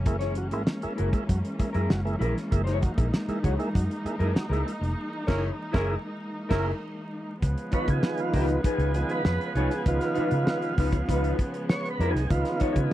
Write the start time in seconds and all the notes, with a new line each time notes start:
Already playing: E3 G#3 A#3 C#4
0.05 F#1 G#3 A#3 E4, muted clean electric guitar stroke, kick, closed hi-hat
0.19 E4 G#4 C#5, snare, closed hi-hat
0.35 F#3, muted clean electric guitar stroke, closed hi-hat
0.50 G#1 G#3 A#3 E4, muted clean electric guitar stroke, closed hi-hat
0.65 muted clean electric guitar stroke, snare
0.82 G#3 A#3 E4, muted fingered electric bass stroke, closed hi-hat
0.96 F#1 F#3 E4 G#4 A#4, closed hi-hat
1.11 G#3 A#3 E4, muted clean electric guitar stroke, kick, closed hi-hat
1.27 F#2 F#3, muted clean electric guitar stroke, kick, closed hi-hat
1.42 muted clean electric guitar stroke, closed hi-hat
1.59 G#3 A#3 E4, muted fingered electric bass stroke, kick, closed hi-hat
1.73 F#2 A#3 E4 G#4 A#4, closed hi-hat
1.90 F#1 F#3, snare
2.04 G#3 A#3 E4, muted clean electric guitar stroke, closed hi-hat
2.19 A#1 A#3 E4 G#4 A#4, closed hi-hat
2.35 muted clean electric guitar stroke, snare, closed hi-hat
2.49 F#1 G#3 A#3 D#4 E4, muted clean electric guitar stroke, kick, closed hi-hat
2.64 E4 G#4 C#5, snare, closed hi-hat
2.80 F#3, muted clean electric guitar stroke, kick, closed hi-hat
2.96 A#1 G#3 A#3 E4, muted clean electric guitar stroke, kick, closed hi-hat
3.11 muted clean electric guitar stroke, snare
3.28 G#3 A#3 E4, muted fingered electric bass stroke, closed hi-hat
3.42 C#2 F#3 E4 G#4 C#5, kick, closed hi-hat
3.57 G#3 A#3 E4, muted clean electric guitar stroke, closed hi-hat
3.73 F#2 F#3, muted clean electric guitar stroke, kick, closed hi-hat
3.87 muted clean electric guitar stroke, closed hi-hat
4.05 G#3 A#3 E4, muted fingered electric bass stroke, closed hi-hat
4.19 F#2 A#3 E4 G#4 A#4, closed hi-hat
4.33 muted clean electric guitar stroke, muted fingered electric bass stroke, snare
4.37 F#3
4.49 C#2 G#3 A#3 E4 G#4 A#4, closed hi-hat
4.65 A#3 E4, muted clean electric guitar stroke, closed hi-hat
4.81 F1, muted clean electric guitar stroke, closed hi-hat
5.27 F#1 A#3 C#4 E4 G#4 A#4 C#5, kick, snare, crash
5.72 F#1 G#3 A#3 C#4 E4 G#4 A#4, kick, snare
6.49 F#1 G#3 A#3 C#4 E4 G#4 A#4, kick, snare, crash
7.40 C#2 C#3 F3 G#3 B3 F4 G#4 B4, kick, closed hi-hat
7.58 closed hi-hat
7.71 D#3 F3 B3 D#4 F4 B4 C#5, muted fingered electric bass stroke, kick, closed hi-hat
7.88 C#3 G#4, kick, closed hi-hat
8.01 muted clean electric guitar stroke, snare
8.18 F4, muted clean electric guitar stroke, closed hi-hat
8.32 C#2 D#4 F4 G4 B4, kick, open hi-hat
8.48 muted clean electric guitar stroke, closed hi-hat
8.63 D#4 F4 G#4 B4, muted fingered electric bass stroke, kick, closed hi-hat
8.78 C#2, closed hi-hat
8.94 D#3 F3 B3, muted clean electric guitar stroke, closed hi-hat
9.09 B4, muted clean electric guitar stroke, closed hi-hat
9.25 F2, muted clean electric guitar stroke, snare
9.41 muted clean electric guitar stroke, closed hi-hat
9.55 C2 D#4 F4 G#4 C#5, closed hi-hat
9.70 muted clean electric guitar stroke, snare, closed hi-hat
9.86 C#2 D#3 F3 B3 F4, kick, closed hi-hat
10.01 snare, closed hi-hat
10.15 D#4 F4 B4, muted fingered electric bass stroke, closed hi-hat
10.31 C#3, closed hi-hat
10.47 muted clean electric guitar stroke, snare
10.62 muted clean electric guitar stroke, closed hi-hat
10.78 C#2 D#4 F4 B4, kick, open hi-hat
10.92 muted clean electric guitar stroke, kick, closed hi-hat
11.08 C#2 D#3 F3 B3 D#4 F4 B4, kick, closed hi-hat
11.24 closed hi-hat
11.39 muted clean electric guitar stroke, kick, closed hi-hat
11.54 muted clean electric guitar stroke, closed hi-hat
11.69 C#5, snare
11.84 muted clean electric guitar stroke, closed hi-hat
11.90 B4
11.99 F2 D#4 F4 B4, closed hi-hat
12.11 C2 G#4, muted clean electric guitar stroke
12.16 snare, closed hi-hat
12.30 C#2 D#3 F3 B3 F4, kick, closed hi-hat
12.45 snare, closed hi-hat
12.52 F4
12.59 D#4 F4 C#5, muted fingered electric bass stroke, kick, closed hi-hat
12.73 C#3 G#4, kick, closed hi-hat